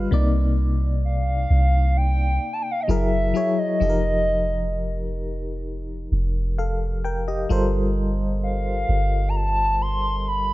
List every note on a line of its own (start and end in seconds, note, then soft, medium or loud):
0.00 0.13 G3 medium
0.00 0.14 F4 medium
0.00 0.13 B4 medium
0.00 0.14 F5 loud
0.11 1.46 C2 loud
0.11 1.60 C3 medium
0.11 1.60 A#3 medium
0.11 1.61 D#4 medium
0.11 1.61 D5 medium
1.05 1.99 F5 loud
1.50 2.39 C2 loud
1.97 2.55 G5 loud
2.53 2.64 A5 medium
2.62 2.73 G5 medium
2.71 2.82 F5 medium
2.80 2.90 D#5 medium
2.80 2.84 G5 medium
2.88 3.33 F#1 loud
2.88 3.25 F#3 medium
2.88 3.26 E4 medium
2.88 3.26 G#4 medium
2.88 3.27 A#4 medium
2.88 3.60 E5 loud
3.34 3.71 F#3 medium
3.34 3.72 E4 medium
3.34 3.72 G#4 medium
3.34 3.73 C#5 medium
3.58 5.43 D#5 loud
3.80 6.08 F1 loud
3.80 5.29 F3 medium
3.80 5.29 D#4 medium
3.80 5.30 G4 medium
3.80 3.89 A4 medium
3.89 5.34 A#4 medium
6.12 7.46 F1 loud
6.58 7.02 A4 medium
6.58 7.02 F5 medium
7.04 7.27 A#4 medium
7.04 7.26 G5 medium
7.28 7.72 G4 medium
7.28 7.71 D#5 medium
7.49 8.85 G1 loud
7.49 8.98 G3 medium
7.49 8.99 F4 medium
7.49 8.99 A4 medium
7.49 8.99 A#4 medium
7.49 9.00 C5 medium
8.43 9.30 F5 medium
8.89 10.54 G1 loud
9.29 9.37 A#5 medium
9.36 9.83 A5 loud
9.82 10.29 C6 loud
10.28 10.54 B5 loud